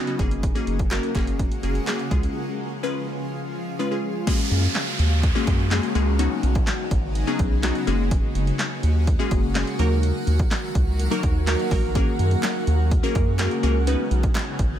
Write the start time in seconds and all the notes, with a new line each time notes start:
Already playing: C#3 F#3 B3 D#4
0.07 B3 C#4 D#4 F#4, closed hi-hat
0.19 F#1 G#3 A#3 C#4 F#4 G#4, kick, closed hi-hat
0.31 closed hi-hat
0.43 kick, closed hi-hat
0.55 A#3 C#4 F#4 G#4, closed hi-hat
0.67 F#1, closed hi-hat
0.79 kick, closed hi-hat
0.91 A#3 C#4 F#4 A#4, snare, clap, closed hi-hat
1.03 closed hi-hat
1.15 F#1 A#3 C#4 F#4 G#4, kick, clap, closed hi-hat
1.27 closed hi-hat
1.39 kick, closed hi-hat
1.52 closed hi-hat
1.63 F#1 A#3 C#4 F#4 G#4, closed hi-hat
1.75 closed hi-hat
1.87 A#3 C#4 F#4 G#4, snare, clap, closed hi-hat
1.99 closed hi-hat
2.11 C#2 F3 G#3 C#4 F4 G#4, kick, closed hi-hat
2.23 closed hi-hat
2.83 G#3 C#4 F4 B4
3.79 G#3 C#4 F4 B4
3.91 G#3 C#4 F4 G#4
4.27 C#3 G#3 A#3 C#4 F#4 G#4, kick, closed hi-hat, crash, downlifter
4.51 F#2, closed hi-hat
4.63 closed hi-hat
4.75 snare, clap, closed hi-hat
4.99 D#2, closed hi-hat
5.23 kick, closed hi-hat
5.35 G#3 A#3 C#4 F#4 G#4
5.47 F#2, kick, closed hi-hat
5.71 G#3 A#3 C#4 F#4 G#4, snare, clap, closed hi-hat
5.83 closed hi-hat
5.95 C#2 G#3 A#3 C#4 F#4 G#4, closed hi-hat
6.19 F#3 B3 C#4 D#4 F#4, closed hi-hat
6.43 B1, closed hi-hat
6.55 kick, closed hi-hat
6.67 snare, clap, closed hi-hat
6.91 G#1, kick, closed hi-hat
7.15 closed hi-hat
7.27 F#3 B3 C#4 D#4 G#4
7.39 B1, kick, closed hi-hat
7.63 F#3 B3 C#4 D#4 F#4, snare, clap, closed hi-hat
7.75 closed hi-hat
7.87 F#1 G#3 A#3 C#4 F#4 G#4, closed hi-hat
8.11 kick, closed hi-hat
8.35 F#1, closed hi-hat
8.47 closed hi-hat
8.59 snare, clap, closed hi-hat
8.83 D#2, closed hi-hat
9.07 kick, closed hi-hat
9.19 G#3 A#3 C#4 F#4 G#4
9.31 F#1, kick, closed hi-hat
9.55 G#3 A#3 C#4 F#4 G#4, snare, clap, closed hi-hat
9.67 closed hi-hat
9.79 D#2 D#3 F#3 A#3 D#4 F#4 A#4, closed hi-hat
10.03 closed hi-hat
10.27 D#2, closed hi-hat
10.39 kick, closed hi-hat
10.51 snare, clap, closed hi-hat
10.75 C#2, kick, closed hi-hat
10.99 closed hi-hat
11.11 F#3 A#3 D#4 F#4 A#4
11.23 D#2, kick, closed hi-hat
11.47 F#3 A#3 D#4 F#4 A#4, snare, clap, closed hi-hat
11.59 closed hi-hat
11.71 A#1 F#3 A#3 D#4 F#4 A#4, kick, open hi-hat
11.95 C#3 G#3 A#3 C#4 F#4 G#4 A#4, kick, closed hi-hat
12.19 F#2, closed hi-hat
12.31 closed hi-hat
12.43 snare, clap, closed hi-hat
12.67 D#2, closed hi-hat
12.91 kick, closed hi-hat
13.03 A#3 C#4 F#4 G#4 A#4
13.15 F#2, kick, closed hi-hat
13.39 A#3 C#4 F#4 G#4 A#4, snare, clap, closed hi-hat
13.51 closed hi-hat
13.63 C#2 A#3 C#4 F#4 G#4 A#4, closed hi-hat
13.87 F#3 B3 C#4 D#4 F#4 B4, closed hi-hat
14.11 B1, closed hi-hat
14.23 kick, closed hi-hat
14.35 snare, clap, closed hi-hat
14.59 G#1, kick, closed hi-hat